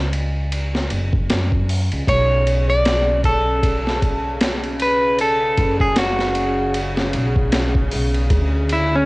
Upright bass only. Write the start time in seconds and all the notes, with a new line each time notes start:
Already playing: C#2
0.91 F#1
1.30 F#2
1.92 C#2
2.08 B1
5.58 F#1
7.14 B1
7.93 B1
8.31 D2